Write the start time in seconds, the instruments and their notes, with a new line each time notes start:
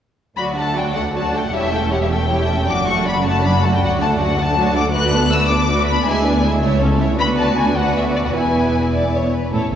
0.37 double bass section D2, cello section D2, viola section F#3 F#4, violin section F#4 D5 B5
0.57 viola section A3 D4, violin section A4 F#5 A5
0.76 viola section F#3 F#4, violin section F#4 D5 G5
0.94 viola section A3 D4, violin section A4 F#5
1.15 viola section F#3 F#4, violin section F#4 D5 A5
1.33 viola section A3 D4, violin section A4 F#5 G5
1.45 violin section F#5
1.52 double bass section E1, cello section E2, viola section G3 E4, violin section G4 C#5 E5
1.71 viola section A3 C#4, violin section A4 E5 G5
1.90 viola section G3 E4, violin section G4 C#5 F#5
2.02 violin section E5
2.10 viola section A3 C#4, violin section A4 E5 G5
2.29 viola section G3 E4, violin section G4 C#5
2.47 viola section A3 C#4, violin section A4 E5
2.67 double bass section F#1, cello section F#2, viola section F#3 D4, violin section F#4 D5 D6
2.86 viola section A3 F#4, violin section A4 F#5 C#6
3.05 viola section F#3 D4, violin section F#4 D5 B5
3.23 viola section A3 F#4, violin section A4 F#5 A5
3.44 viola section F#3 D4, violin section F#4 D5 B5
3.62 viola section A3 F#4, violin section A4 F#5 A5
3.74 violin section G5
3.82 double bass section D2, cello section D2, viola section F#3 F#4, violin section F#4 D5 F#5
4.01 viola section A3 D4, violin section A4 F#5 A5
4.19 viola section F#3 F#4, violin section F#4 D5 F#5
4.37 viola section A3 D4, violin section A4 F#5 A5
4.57 viola section F#3 F#4, violin section F#4 D5
4.75 viola section A3 D4, violin section A4 F#5 D6
4.94 viola section A3 F#4, violin section B4 D5 F#6
5.13 viola section B3 D4, violin section A4 B4
5.31 viola section A3 F#4, violin section B4 D5 E6
5.49 viola section B3 D4, violin section A4 B4 D6
5.69 viola section A3 F#4, violin section B4 D5
5.86 viola section B3 D4, violin section A4 B4 B5
6.06 double bass section D2, cello section D2, viola section G#3 E4, violin section G#4 E5 G#5
6.24 viola section B3 D4, violin section B4 D5
6.43 viola section G#3 E4, violin section G#4 E5
6.62 double bass section C#2, cello section C#2, viola section A3 E4, violin section C#5 E5
6.81 viola section C#4, violin section A4 C#5
6.99 viola section A3 E4, violin section C#5 E5
7.18 double bass section D2, cello section D2, viola section B3 F#4, violin section B4 D5 B5
7.38 violin section A5
7.57 violin section G#5
7.76 viola section B3 F#4, violin section B4 D5 F#5
7.96 violin section E5
8.16 violin section D5
8.25 violin section F#5
8.34 double bass section E1, cello section E2, viola section B3 E4, violin section B4 G#5
8.94 violin section D5
9.15 violin section C#5
9.33 violin section B4
9.53 double bass section A1, cello section A2, viola section E4, violin section A4 C#5
9.72 double bass section A1, viola section E4, violin section A4 C#5